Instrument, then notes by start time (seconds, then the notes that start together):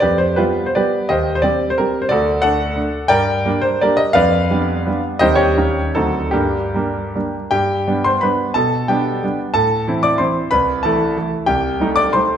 grand piano
0.00 F2 G4 B4 D5
0.18 C5
0.36 G3 B3 F4 G4 B4
0.66 C5
0.75 G3 B3 G4 B4 D5
1.09 D#2 G4 C5 D#5
1.35 C5
1.42 G3 C4 G4 D5
1.70 C5
1.78 G3 C4 G4 A#4
2.02 C5
2.09 D2 F#4 A4 D5
2.42 A3 D4 A4 D5 F#5
2.76 A3 D4
3.08 G2 A#4 D5 G5
3.45 G3 A#3 D4
3.62 C5
3.81 G3 A#3 D4 G4 A#4 D5
3.97 D#5
4.13 F2 B4 D5 F5
4.50 G3 B3 D4
4.86 G3 B3 D4
5.19 D#2 G3 C4 D#4 G4 C5 D#5
5.35 G4 C#5
5.57 D#2 G3 C#4 D#4
5.95 D2 F#3 C4 D#4 F#4 A4
6.31 G2 A#3 D4 G4
6.74 G3 A#3 D4
7.15 G3 A#3 D4
7.51 G2 G4 G5
7.87 G3 B3 D4
8.04 C5 C6
8.21 G3 B3 D4 B4 B5
8.54 B2 A4 A5
8.88 G3 B3 D4 G4 G5
9.23 G3 B3 D4
9.54 A2 A4 A5
9.87 E3 C4 E4
10.03 D5 D6
10.18 E3 C4 E4 C5 C6
10.51 C2 B4 B5
10.83 E3 A3 E4 A4 A5
11.17 E3 A3 E4
11.46 C2 G4 G5
11.80 G3 A3 D#4
11.96 D5 D6
12.13 G3 A3 D#4 C5 C6